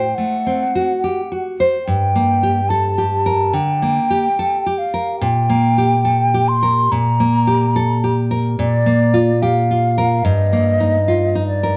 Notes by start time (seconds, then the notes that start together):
Already playing: A2 C5 G5
0.15 A3 F#5
0.46 C4
0.75 F#4
1.04 G4
1.32 F#4
1.60 C5
1.86 G2 G5
2.15 A#3
2.43 G4
2.69 A4 A5
2.98 G4
3.26 A#4
3.53 D3 G5
3.82 A#3
4.10 G4
4.39 A4
4.66 G4
4.78 F5
4.94 A#4
5.21 A#2 G5
5.50 A#3
5.78 G4
6.05 A4
6.34 G4
6.48 C6
6.63 A#4
6.92 A#2 A#5
7.20 A#3
7.47 G4
7.76 A4
8.04 G4
8.31 A#4
8.59 A#2 D5
8.86 A#3
9.14 F4
9.42 G4 F5
9.71 F4
9.98 A#4
10.24 G2 D#5
10.53 A#3
10.80 D#4
11.08 F4
11.35 D#4
11.48 D5
11.63 A#4